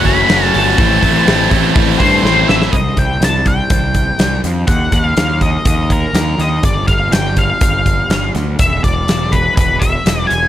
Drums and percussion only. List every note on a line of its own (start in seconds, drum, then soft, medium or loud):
0.05 kick medium
0.05 open hi-hat medium
0.29 snare loud
0.29 open hi-hat medium
0.54 open hi-hat medium
0.78 kick loud
0.78 open hi-hat medium
1.03 kick medium
1.03 open hi-hat medium
1.27 snare loud
1.27 open hi-hat medium
1.51 kick medium
1.51 open hi-hat medium
1.76 kick loud
1.76 open hi-hat medium
2.00 kick medium
2.00 open hi-hat medium
2.25 snare medium
2.49 snare loud
2.62 snare medium
2.73 kick loud
2.73 closed hi-hat medium
2.97 kick medium
2.97 closed hi-hat medium
3.22 snare loud
3.22 closed hi-hat medium
3.46 kick medium
3.46 closed hi-hat medium
3.70 kick loud
3.70 closed hi-hat medium
3.94 kick medium
3.94 closed hi-hat medium
4.19 snare loud
4.19 closed hi-hat medium
4.44 snare soft
4.44 closed hi-hat medium
4.67 kick loud
4.67 closed hi-hat medium
4.92 kick medium
4.92 closed hi-hat medium
5.17 snare loud
5.17 closed hi-hat medium
5.41 kick medium
5.41 closed hi-hat medium
5.65 kick loud
5.65 closed hi-hat medium
5.90 kick medium
5.90 closed hi-hat medium
6.14 snare loud
6.14 closed hi-hat medium
6.40 snare soft
6.40 closed hi-hat medium
6.63 kick medium
6.63 closed hi-hat medium
6.88 kick medium
6.88 closed hi-hat medium
7.12 snare loud
7.12 closed hi-hat medium
7.37 kick medium
7.37 closed hi-hat medium
7.61 kick loud
7.61 closed hi-hat medium
7.86 kick medium
7.86 closed hi-hat medium
8.10 snare loud
8.10 closed hi-hat medium
8.35 snare soft
8.35 closed hi-hat medium
8.59 kick loud
8.59 closed hi-hat medium
8.84 kick medium
8.84 closed hi-hat medium
9.08 snare loud
9.08 closed hi-hat medium
9.32 kick medium
9.32 closed hi-hat medium
9.57 kick loud
9.57 closed hi-hat medium
9.82 kick medium
9.82 closed hi-hat medium
10.06 snare loud
10.06 closed hi-hat medium
10.30 closed hi-hat medium